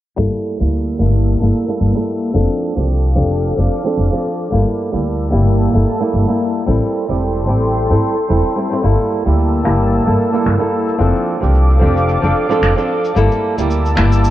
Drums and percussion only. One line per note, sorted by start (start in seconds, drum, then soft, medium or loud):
8.84 cabasa soft
8.99 cabasa soft
9.27 cabasa medium
9.39 cabasa soft
9.53 cabasa soft
9.65 finger snap medium
9.81 cabasa medium
9.93 cabasa soft
10.08 cabasa soft
10.35 cabasa medium
10.47 finger snap medium
10.47 cabasa soft
10.62 cabasa soft
10.89 cabasa medium
11.01 cabasa soft
11.16 cabasa soft
11.43 cabasa medium
11.55 cabasa soft
11.70 cabasa soft
11.97 cabasa medium
12.09 cabasa soft
12.24 cabasa soft
12.51 cabasa medium
12.63 finger snap medium
12.63 cabasa soft
12.78 cabasa soft
13.05 cabasa medium
13.16 cabasa soft
13.32 cabasa soft
13.58 cabasa medium
13.70 cabasa soft
13.86 cabasa soft
13.97 finger snap medium
14.12 cabasa medium
14.24 cabasa soft